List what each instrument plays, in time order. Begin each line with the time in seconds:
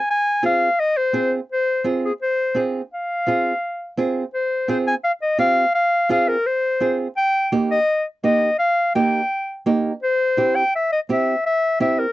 0.10 clarinet G#5
0.43 nylon-string guitar C4 F4 G#4, clarinet F5
0.80 clarinet D#5
0.97 clarinet C5
1.13 nylon-string guitar C4 F4 G#4
1.52 clarinet C5
1.84 nylon-string guitar C4 F4 G#4
2.05 clarinet G#4
2.22 clarinet C5
2.55 nylon-string guitar C4 F4 G#4
2.94 clarinet F5
3.27 nylon-string guitar C4 F4 G#4
3.97 nylon-string guitar C4 F4 G#4
4.34 clarinet C5
4.68 nylon-string guitar C4 F4 G#4, clarinet C5
4.87 clarinet G#5
5.04 clarinet F5
5.22 clarinet D#5
5.38 nylon-string guitar C4 F4 G4, clarinet F5
5.74 clarinet F5
6.09 nylon-string guitar C4 F4 G#4, clarinet F5
6.28 clarinet A#4
6.46 clarinet C5
6.80 nylon-string guitar C4 F4 G#4
7.17 clarinet G5
7.52 nylon-string guitar A#3 D#4 G4
7.71 clarinet D#5
8.24 nylon-string guitar A#3 D#4 G4, clarinet D#5
8.59 clarinet F5
8.95 nylon-string guitar A#3 D#4 G4, clarinet G5
9.66 nylon-string guitar A#3 D#4 G4
10.03 clarinet C5
10.37 nylon-string guitar C4 E4 G4
10.56 clarinet G5
10.76 clarinet E5
10.92 clarinet D#5
11.09 nylon-string guitar C4 E4 G4, clarinet E5
11.46 clarinet E5
11.80 nylon-string guitar C4 E4 G4, clarinet E5
11.99 clarinet A#4